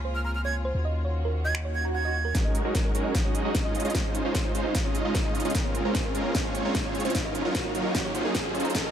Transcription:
Already playing: C#2 C#3 A#3 C4 F4 G#4
0.05 C5
0.15 F6
0.25 A#5 F6
0.35 F6
0.45 C#5 G#6
0.65 C5
0.75 D#2 D#3 C#4 F#4
0.85 D#5
1.05 C#5
1.25 A#4
1.45 D#5 G#6
1.55 finger snap, swell
1.65 C#5
1.75 G#6
1.85 A#5
1.95 F#5 G#6
2.05 D#5
2.25 A#4
2.35 F#3 G#3 C#4 D#4 F#4 G#4 A#4, kick, snare, closed hi-hat, riser
2.45 D#5
2.55 closed hi-hat
2.65 G#3 C#4 D#4 F#4 A#4 C#5
2.75 kick, snare, closed hi-hat
2.85 A#4
2.95 G#3 C#4 D#4 F#4 A#4, closed hi-hat
3.05 D#5
3.15 kick, snare, closed hi-hat
3.25 G#3 C#4 D#4 F#4 C#5 D#5
3.35 closed hi-hat
3.45 G#3 C#4 D#4 F#4 D#5 A#5
3.55 kick, snare, closed hi-hat
3.65 G#3 C#4 D#4 F4 D#5
3.75 C#2 C#3 G#3 C4 D#4 F4, closed hi-hat
3.80 closed hi-hat
3.85 G#3 C#4 D#4 F4 C#5 D#5, closed hi-hat
3.90 closed hi-hat
3.95 C5, kick, snare, closed hi-hat
4.05 D#5
4.15 closed hi-hat
4.25 G#3 C#4 D#4 F4 C5 C#5
4.35 kick, snare, closed hi-hat
4.45 C5
4.55 G#3 C#4 D#4 F4 C5, closed hi-hat
4.65 D#5
4.75 kick, snare, closed hi-hat
4.85 G#3 C#4 D#4 F4 C#5 D#5
4.95 closed hi-hat
5.05 G#3 C#4 D#4 F4 D#5 C6
5.15 kick, snare, closed hi-hat
5.25 G#3 C#4 D#4 F4 D#5
5.35 closed hi-hat
5.40 closed hi-hat
5.45 G#3 C#4 D#4 F4 C#5 D#5, closed hi-hat
5.50 closed hi-hat
5.55 C#2 A#3 G#4 A#4, kick, snare, closed hi-hat
5.65 C#5
5.75 closed hi-hat
5.85 G#3 C4 C#4 F4 A#4 C5
5.95 kick, snare, closed hi-hat
6.05 A#4
6.15 G#3 C4 C#4 F4 A#4, closed hi-hat
6.25 C#5
6.35 kick, snare, closed hi-hat
6.45 G#3 C4 C#4 F4 C5 C#5
6.55 closed hi-hat
6.65 G#3 C4 C#4 F4 C#5 A#5
6.75 kick, snare, closed hi-hat
6.85 G#3 C4 C#4 F4 C#5
6.95 closed hi-hat
7.00 closed hi-hat
7.05 G#3 C4 C#4 F4 C5 C#5, closed hi-hat
7.10 closed hi-hat
7.15 D#2 D#3 F#3 A#3 C#4 D#4 F4 F#4 A#4, kick, snare, closed hi-hat
7.25 D#5
7.35 closed hi-hat
7.45 F#3 C#4 D#4 F4 A#4 C#5
7.55 kick, snare, closed hi-hat
7.65 A#4
7.75 F#3 C#4 D#4 F4 A#4, closed hi-hat
7.85 D#5
7.95 kick, snare, closed hi-hat
8.05 F#3 C#4 D#4 F4 C#5
8.15 F#3 C#4 D#4 F4 C5, closed hi-hat
8.25 F#3 C#4 D#4 F4 G#4 A#4
8.35 kick, snare, closed hi-hat
8.45 F#3 C#4 D#4 F4 C5 F5
8.55 C#5, closed hi-hat
8.60 closed hi-hat
8.65 A#5, closed hi-hat
8.70 closed hi-hat
8.74 F#3 G#3 C#4 D#4 F#4 G#4 A#4, kick, snare, closed hi-hat
8.85 D#5

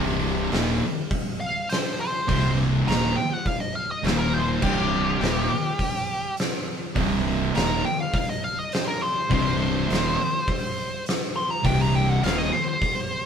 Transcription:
Already playing: C1 C2 G2 C3
0.52 D#1 D#2 A#2 D#3, snare, open hi-hat
1.11 kick, open hi-hat
1.40 F5
1.69 C5, snare, open hi-hat
2.01 C5
2.27 C1 C2 G2 C3 C5, kick, open hi-hat
2.87 D#1 D#2 A#2 D#3 A#5, open hi-hat
2.91 snare
3.16 G5
3.33 F#5
3.46 F5, kick, open hi-hat
3.60 D#5
3.75 F5
3.91 D#5
4.03 D#1 D#2 A#2 D#3 C5, snare, open hi-hat
4.18 A#4
4.34 C5
4.62 C1 C2 G2 C3 G4, kick, crash
5.20 D#1 D#2 A#2 D#3, snare, open hi-hat
5.79 kick, open hi-hat
6.37 snare, open hi-hat
6.95 C1 C2 G2 C3, kick, open hi-hat
7.54 D#1 D#2 A#2 D#3 A#5, snare, open hi-hat
7.85 G5
8.00 F5
8.14 F5, kick, open hi-hat
8.30 D#5
8.44 F5
8.59 D#5
8.72 C5, snare, open hi-hat
8.88 A#4
9.02 C5
9.30 C1 C2 G2 C3 C5, kick, open hi-hat
9.88 D#1 D#2 A#2 D#3, open hi-hat
9.93 snare
10.48 kick, open hi-hat
11.06 snare, open hi-hat
11.36 C6
11.50 A#5
11.64 C1 C2 G2 C3 G5, kick, open hi-hat
11.80 A#5
11.95 G5
12.09 F#5
12.22 D#1 D#2 A#2 D#3 F5, open hi-hat
12.26 snare
12.38 D#5
12.53 C5
12.82 kick, open hi-hat

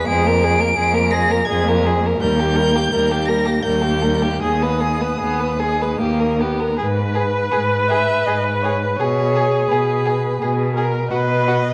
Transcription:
0.07 F2 G#3 G#4 D7
0.24 A#3 A#4
0.41 G#3 G#4
0.59 A#3 A#4
0.76 F2 G#3 G#4
0.92 A#3 A#4
1.10 G#3 G#4 A#6
1.29 A#3 A#4
1.45 F2 G#3 G#4 G#6
1.64 A#3
1.68 A#4
1.83 G#3 G#4
2.00 A#3
2.06 A#4
2.18 D#2 G3 A#4 G6
2.36 A#3 G4
2.54 G3 A#4
2.72 A#3 G4
2.91 D#2 G3 A#4
3.10 A#3 G4
3.26 G3 A#4 A#6
3.46 A#3 G4
3.63 D#2 G3 A#4 G6
3.82 A#3 G4
4.02 G3 A#4
4.22 A#3 G4
4.41 D#2 G#3 G#4 D#6
4.62 B3 B4
4.81 G#3 G#4
5.01 B3 B4
5.19 D#2 B3 G#4
5.40 B4
5.59 G#3 G#4
5.82 B4
5.99 D#2 A#3 G4
6.20 A#4
6.39 B3 G4
6.60 A#4
6.77 G#2 G#4 B4
7.15 G#4
7.51 G#2 G#4
7.88 G#4 E5
8.25 G#2 G#4 D#5
8.44 B4
8.62 G#4 C#5
8.82 B4
8.96 B2 G#4 C#5
9.36 G#4
9.68 B2 G#4 B4
10.06 G#4
10.40 B2 G#4
10.75 G#4 A#4
11.08 F#4 B4 D#5
11.12 B2
11.47 F#4

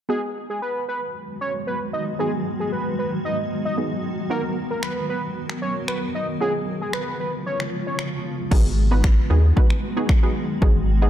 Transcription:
0.09 D#3 F#3 G#3 B3 D#4 F#4 G#4
0.50 G#4
0.62 B4
0.88 B4
1.41 C#5
1.67 B4
1.93 D#5
2.19 B3 D#4 F#4 G#4
2.60 G#4
2.72 B4
2.99 B4
3.25 D#5
3.65 D#5
3.78 B3 D#4 F#4 G#4
4.30 F#3 B3 D#4 F#4 A#4
4.71 A#4
4.83 B4, finger snap
5.09 B4
5.50 finger snap
5.62 C#5
5.88 B4, finger snap
6.15 D#5
6.40 C#3 F3 G#3 B3 C#4 F4 G#4
6.82 G#4
6.93 B4, finger snap
7.20 B4
7.46 C#5
7.60 finger snap
7.87 C#5
7.99 finger snap
8.51 G#1 D#3 F#3 G#3 B3 D#4 F#4 G#4, kick, crash
8.65 G#1
8.91 B3 D#4 F#4 B4
9.04 finger snap, kick
9.30 D#2 B3 D#4 F#4 G#4
9.56 B3 D#4 F#4 B4, kick
9.70 finger snap
9.97 B3 D#4 F#4 G#4
10.09 finger snap, kick
10.23 B3 D#4 F#4 G#4
10.62 G#1 B3 D#4 F#4 G#4, kick
10.76 G#1
11.02 B3 D#4 F#4 G#4

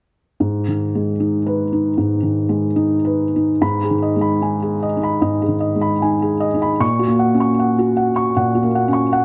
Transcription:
0.40 G#2
0.68 D#3
0.95 G#3
1.20 D#4
1.46 B4
1.72 D#4
1.98 G#2
2.23 D#3
2.49 G#3
2.76 D#4
3.05 B4
3.36 D#4
3.61 G#2 B5
3.83 G#4
3.90 D#3
4.02 D#5
4.16 G#3
4.21 B5
4.42 D#4 G#5
4.62 G#4
4.83 D#5
4.97 D#4
5.03 B5
5.21 G#2 D#5
5.42 G#4
5.48 D#3
5.60 D#5
5.75 G#3
5.81 B5
6.02 D#4 G#5
6.22 G#4
6.40 D#5
6.54 D#4
6.62 B5
6.80 A#2 C#6
6.99 F#4
7.08 A#3
7.19 F#5
7.34 C#4
7.40 C#6
7.59 F#5
7.79 F#4
7.97 F#5
8.16 C#6
8.36 A#2 F#5
8.55 F#4
8.63 A#3
8.75 F#5
8.88 C#4
8.93 C#6
9.13 F#5

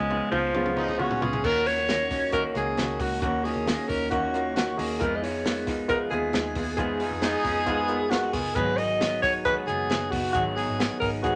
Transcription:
Already playing: F3 G#3 B3 C#4 D#4 F4 G#4
0.00 C#2
0.09 C#3 G#3 B3 C#4 F4 G#4, high tom
0.31 C#2 F3 G#3 B3 C#4 F4, high tom
0.45 C#4
0.54 C#3 G#3 B3 C#4 F4, mid tom
0.66 mid tom
0.77 B3 C#4 D#4 F4 G#4, mid tom
0.89 mid tom
0.98 C#3 G#3 B3 C#4 F4 F#4, mid tom
1.11 floor tom
1.21 C#2 B3 C#4 F4 G#4, floor tom
1.33 floor tom
1.43 D#2 D#3 A#3 C#4 D#4 F#4 A#4, kick, crash
1.65 A#3 B3 C#4 D#4 F4 F#4 C#5, hi-hat pedal, open hi-hat
1.79 C#4
1.88 D#3 A#3 C#4 D#4 F#4, snare, hi-hat pedal, open hi-hat
2.10 A#3 C#4 D#4 F#4, kick, snare, hi-hat pedal, open hi-hat
2.32 D#3 A#3 C#4 D#4 F#4 A#4, kick, hi-hat pedal, open hi-hat
2.54 C#2 A#3 C#4 D#4 F#4 G#4, hi-hat pedal, open hi-hat
2.77 C#2 D#3 A#3 C#4 D#4 F#4, snare, hi-hat pedal, open hi-hat
2.99 C#2 A#3 C#4 D#4 F#4, kick, hi-hat pedal, open hi-hat
3.22 D#2 D#3 A#3 C#4 D#4 F#4, kick, hi-hat pedal, open hi-hat
3.44 A#3 C#4 D#4 F4 F#4 G#4, hi-hat pedal, open hi-hat
3.56 D#2
3.65 D#3 A#3 C#4 D#4 F4 F#4, snare, hi-hat pedal, open hi-hat
3.88 D#2 A#3 C#4 D#4 F#4 A#4, kick, hi-hat pedal, open hi-hat
4.10 D#3 A#3 C#4 D#4 F#4, kick, hi-hat pedal, open hi-hat
4.34 A#3 C#4 D#4 F4, hi-hat pedal, open hi-hat
4.54 D#3 A#3 C#4 D#4 F#4, snare, hi-hat pedal, open hi-hat
4.77 D#2 A#3 C#4 D#4 F#4 G#4, hi-hat pedal, open hi-hat
4.99 F2 F3 G#3 B3 D#4 F4 G#4 A#4 B4, kick, hi-hat pedal, open hi-hat
5.16 D#5
5.22 B3 D#4 F4 G#4 B4 C#5, hi-hat pedal, open hi-hat
5.44 G#3 B3 D#4 F4 A#4 B4, snare, hi-hat pedal, open hi-hat
5.67 B3 D#4 F4 G#4, kick, snare, hi-hat pedal, open hi-hat
5.88 F3 G#3 B3 D#4 F4 G#4 A#4 B4, kick, hi-hat pedal, open hi-hat
6.10 D#2 B3 D#4 F4 G#4, hi-hat pedal, open hi-hat
6.33 D#2 G#3 B3 D#4 F4 G#4 B4, snare, hi-hat pedal, open hi-hat
6.55 D#2 B3 D#4 F4 G#4 B4, kick, hi-hat pedal, open hi-hat
6.77 F2 F3 G#3 B3 D#4 F4 G#4 B4, kick, hi-hat pedal, open hi-hat
7.00 B3 D#4 F4 G#4 B4, hi-hat pedal, open hi-hat
7.11 F2
7.22 G#3 B3 D#4 F4 G#4 B4, snare, hi-hat pedal, open hi-hat
7.44 F2 B3 C#4 D#4 F4 G#4, kick, hi-hat pedal, open hi-hat
7.57 D#4
7.66 F3 G#3 B3 D#4 F4 G#4 B4, kick, hi-hat pedal, open hi-hat
7.88 B3 D#4 F4 A#4, hi-hat pedal, open hi-hat
8.10 G#3 B3 D#4 F4 F#4 A#4, snare, hi-hat pedal, open hi-hat
8.14 B4
8.23 G#4
8.33 F#1 B3 D#4 F4 G#4 B4, kick, hi-hat pedal, open hi-hat
8.55 G#1 G#2 D#3 F#3 B3 D#4 F#4 G#4 B4, kick, hi-hat pedal, open hi-hat
8.77 F#3 B3 D#4 F#4 A#4 D#5, hi-hat pedal, open hi-hat
9.00 D#3 F#3 B3 D#4 F#4 G#4, snare, hi-hat pedal, open hi-hat
9.22 B3 D#4 F#4 G#4 C#5, kick, snare, hi-hat pedal, open hi-hat
9.45 G#2 D#3 F#3 B3 D#4 F#4 G#4 B4, kick, hi-hat pedal, open hi-hat
9.57 G#4
9.67 F#1 B3 D#4 F#4 G#4, hi-hat pedal, open hi-hat
9.90 F#1 D#3 F#3 B3 D#4 F#4 G#4, snare, hi-hat pedal, open hi-hat
10.10 F#1 B3 D#4 F#4 B4, kick, hi-hat pedal, open hi-hat
10.15 F#3
10.33 G#1 G#2 D#3 F#3 B3 D#4 F#4 G#4, kick, hi-hat pedal, open hi-hat
10.56 B3 D#4 F#4 G#4, hi-hat pedal, open hi-hat
10.68 G#1
10.78 D#3 F#3 B3 D#4 F#4 G#4, snare, hi-hat pedal, open hi-hat
11.00 G#1 B3 D#4 F#4 G#4 A#4, kick, hi-hat pedal, open hi-hat
11.22 G#2 D#3 F#3 B3 D#4 F#4 G#4, kick, hi-hat pedal, open hi-hat

